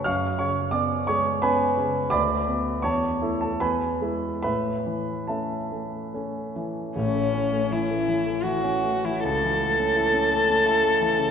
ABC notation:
X:1
M:3/4
L:1/16
Q:1/4=82
K:C#phr
V:1 name="Cello"
z12 | [K:A] z12 | z12 | C4 E4 F3 E |
A12 |]
V:2 name="Grand piano"
[^ec'^e']2 [cc']2 [dd']2 [cc']2 [Bgb]4 | [K:A] [dbd']4 [cac']3 [Aa] [Bgb]4 | [Beb]4 [Aea]6 z2 | z12 |
z12 |]
V:3 name="Grand piano"
F,,2 C,2 [B,C]2 G,2 [B,C]2 C,2 | [K:A] D,,2 B,2 E,,2 [A,E]2 E,,2 [G,E]2 | A,,2 E,2 [A,C]2 A,2 [A,C]2 E,2 | [A,,,A,,] A, C A, E, A, E, A, E, C A, E, |
C,, E, A, C E C A, C E A, E, C, |]